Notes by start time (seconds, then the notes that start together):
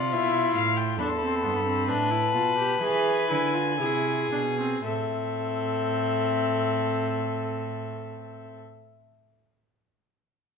Already playing: C3 F4 D5
0.12 B2 E4 E5
0.55 A2 F5
0.77 G5
0.99 E2 D4 A4 B5
1.08 C6
1.17 C4 B5
1.26 C6
1.35 B5
1.43 G2 B3 C6
1.54 B5
1.66 C4
1.88 A2 D4 B4 A5
2.11 E4
2.34 B2 F4
2.58 G4
2.80 E3 G#4 G#5
3.30 D3 E4
3.54 F4
3.79 C3 E4 G#4
4.31 B2 D4
4.58 C4
4.84 A2 C4 A4 E5